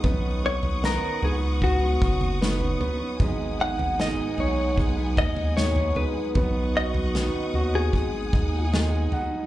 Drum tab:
SD |----o-------o---|----o-------o---|----o-------o---|
FT |o--o--o-o--o-oo-|o--o--o-o--o-oo-|o--o--o-o-----o-|
BD |o-------o-o-----|o-------o-o-----|o-------o-o-----|